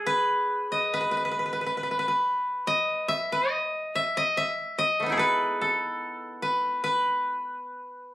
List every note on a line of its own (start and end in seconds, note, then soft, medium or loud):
0.00 1.57 G#4 medium
0.06 0.93 B4 medium
0.72 2.26 D#5 medium
0.94 1.00 B4 medium
1.01 1.11 B4 soft
1.11 1.16 B4 medium
1.17 1.24 B4 soft
1.25 1.31 B4 medium
1.31 1.39 B4 soft
1.39 1.45 B4 soft
1.46 1.52 B4 soft
1.53 1.61 B4 soft
1.61 1.66 B4 soft
1.66 1.77 B4 soft
1.77 1.83 B4 soft
1.83 1.91 B4 soft
1.91 1.99 B4 soft
1.99 2.08 B4 medium
2.08 3.86 B4 soft
2.67 3.14 D#5 medium
3.08 3.38 E5 medium
3.32 4.01 D#5 medium
3.95 4.23 E5 medium
4.17 4.43 D#5 medium
4.37 4.85 E5 medium
4.79 6.33 D#5 medium
5.00 5.18 A3 soft
5.00 7.72 B3 soft
5.06 7.41 D#4 soft
5.06 7.36 E4 soft
5.12 5.67 G#4 medium
5.17 5.61 A4 medium
5.17 6.42 B4 medium
5.61 7.52 A4 medium
6.42 6.83 B4 medium
6.84 8.14 B4 medium